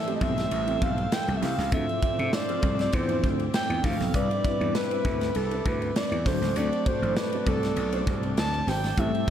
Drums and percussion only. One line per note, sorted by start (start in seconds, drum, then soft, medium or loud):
0.07 ride medium
0.21 kick medium
0.21 ride medium
0.38 snare soft
0.38 ride medium
0.51 ride medium
0.68 ride medium
0.82 kick loud
0.82 ride medium
0.98 ride soft
1.12 snare loud
1.12 ride medium
1.28 ride soft
1.43 snare soft
1.43 open hi-hat medium
1.43 ride medium
1.59 snare soft
1.59 ride soft
1.72 kick loud
1.72 hi-hat pedal medium
1.72 ride medium
1.89 ride soft
2.03 kick loud
2.03 ride medium
2.19 ride soft
2.33 snare loud
2.33 ride medium
2.49 ride medium
2.62 kick medium
2.62 ride medium
2.79 snare soft
2.79 ride soft
2.93 kick medium
2.93 ride medium
3.09 ride medium
3.24 kick medium
3.24 ride medium
3.40 ride soft
3.54 snare loud
3.54 ride medium
3.70 ride soft
3.84 kick medium
3.84 snare soft
3.84 open hi-hat medium
3.84 ride medium
4.00 snare soft
4.00 ride soft
4.14 kick loud
4.14 hi-hat pedal medium
4.14 ride medium
4.31 ride soft
4.45 kick loud
4.45 ride medium
4.61 ride soft
4.75 snare loud
4.75 ride medium
4.91 ride medium
5.05 kick loud
5.05 ride medium
5.21 snare soft
5.21 ride medium
5.35 ride medium
5.51 ride soft
5.66 kick loud
5.66 ride medium
5.82 ride soft
5.96 snare loud
5.96 ride medium
6.12 ride soft
6.26 kick loud
6.26 snare soft
6.26 open hi-hat medium
6.26 ride medium
6.42 snare soft
6.42 ride soft
6.56 hi-hat pedal medium
6.56 ride medium
6.73 ride soft
6.86 kick loud
6.86 ride medium
7.03 ride soft
7.17 snare loud
7.17 ride medium
7.33 ride medium
7.46 kick loud
7.46 ride medium
7.63 snare soft
7.63 ride soft
7.76 ride medium
7.93 ride medium
8.07 kick loud
8.07 ride medium
8.23 ride soft
8.37 snare loud
8.37 ride medium
8.54 ride soft
8.68 snare soft
8.68 open hi-hat medium
8.68 ride medium
8.84 snare soft
8.84 ride soft
8.97 kick loud
8.97 hi-hat pedal medium
8.97 ride medium
9.15 ride soft